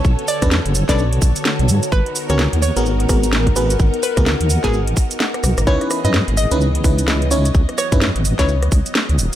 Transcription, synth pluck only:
X:1
M:4/4
L:1/16
Q:"Swing 16ths" 1/4=128
K:C#dor
V:1 name="Synth pluck"
z2 =d z4 d2 z6 z | B2 z c2 z c2 z8 | z2 B z4 G2 z6 z | c2 z d2 z d2 z8 |
z2 c z4 c2 z6 z |]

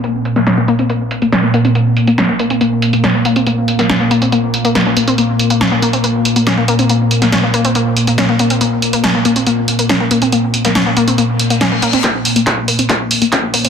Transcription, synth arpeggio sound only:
X:1
M:4/4
L:1/16
Q:1/4=140
K:Bbm
V:1 name="Synth arpeggio sound"
B, z2 B, D B, B, C B, z2 B, D B, B, C | B, z2 B, D B, B, C B, z2 B, D B, B, C | B, z2 B, D B, B, C B, z2 B, B, D B, C | B, z2 B, D B, B, C B, z2 B, D B, B, C |
B, z2 B, D B, B, C B, z2 B, D B, B, C | B, z2 B, D B, B, C B, z2 B, D B, B, C | B, z2 B, D B, B, C B, z2 B, D B, B, C | B, z2 B, D B, B, C B, z2 B, D B, B, C |]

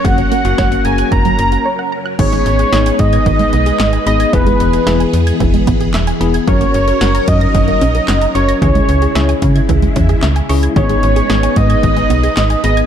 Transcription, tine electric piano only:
X:1
M:4/4
L:1/16
Q:1/4=112
K:G#m
V:1 name="Tine electric piano"
[A,CF]3 [A,CF]2 [A,CF]6- [A,CF] z4 | [B,DG]4 [B,DG]6- [B,DG] z3 [B,DG]2 | [B,EG]4 [B,EG]6- [B,EG] z3 [B,EG]2 | [CFA]4 [CFA]6- [CFA] z3 [CFA]2 |
[CEG]4 [CEG]6- [CEG] z3 [CEG]2 | [B,DG]4 [B,DG]6- [B,DG] z3 [B,DG]2 |]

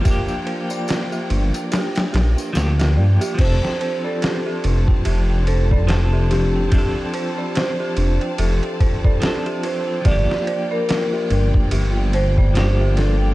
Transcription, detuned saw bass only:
X:1
M:4/4
L:1/8
Q:"Swing 16ths" 1/4=72
K:Fmix
V:1 name="Detuned saw bass" clef=bass
z3 G,,, z B,,, D,, G,, | F,,, z2 F,,, F,,,4 | z3 F,,, F,,, z3 | G,,, z2 G,,, G,,,4 |]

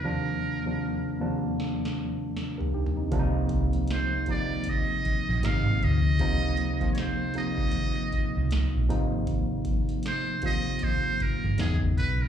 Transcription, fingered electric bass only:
X:1
M:4/4
L:1/16
Q:"Swing 16ths" 1/4=78
K:Ablyd
V:1 name="Fingered electric bass" clef=bass
z16 | C,,6- C,, z4 B,,, A,,, A,,, D,,2 | _D,,6- D,, z4 C,, z B,,, A,,,2- | A,,,6- A,,, z4 G,,, =E,,, E,,, =B,,,2 |]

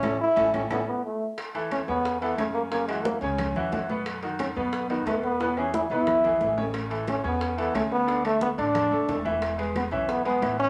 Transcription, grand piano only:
X:1
M:4/4
L:1/8
Q:1/4=179
K:A
V:1 name="Grand piano"
[CEA] z [CEA] [CEA] [CEA] z3 | z [E,EA]2 [C,Cc]2 [E,EA] [C,Cc]2 | [C,Cc] [E,EF]2 [C,Cc]2 [E,EF] [E,EF] [B,,B,B]- | [B,,B,B] [^D,^DF]2 [B,,B,B]2 [D,DF] [B,,B,B]2 |
[B,,B,B] [E,EG]2 [B,,B,B]2 [E,EG] [E,EG] [C,Cc]- | [C,Cc] [E,EA]2 [C,Cc]2 [E,EA] [C,Cc]2 | [D,Dd] [A,A]2 [D,Dd]2 [A,A] [A,A] [E,Ee]- | [E,Ee] [G,GB]2 [E,Ee]2 [G,GB] [E,Ee]2 |]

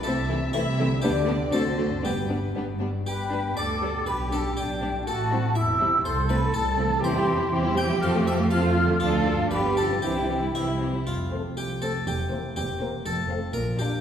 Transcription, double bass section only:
X:1
M:2/4
L:1/8
Q:1/4=121
K:G
V:1 name="Double bass section" clef=bass
C,,2 C,,2 | D,,2 D,,2 | G,,,2 G,,,2 | G,,,2 D,,2 |
B,,,2 B,,,2 | A,,,2 E,,,2 | C,,2 C,,2 | [K:F] E,,2 E,,2 |
F,,2 F,,2 | D,,2 G,,,2 | C,,2 C,,2 | F,,,2 C,,2 |
E,,,2 E,,,2 | F,,,2 B,,,2 |]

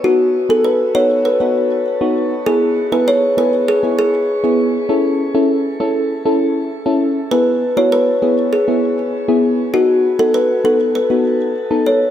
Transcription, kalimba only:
X:1
M:4/4
L:1/16
Q:1/4=99
K:E
V:1 name="Kalimba"
F3 A B2 c2 B6 z2 | G3 B c2 B2 G2 G4 z2 | z16 | B3 c B4 G6 z2 |
F3 A B2 A2 B6 c2 |]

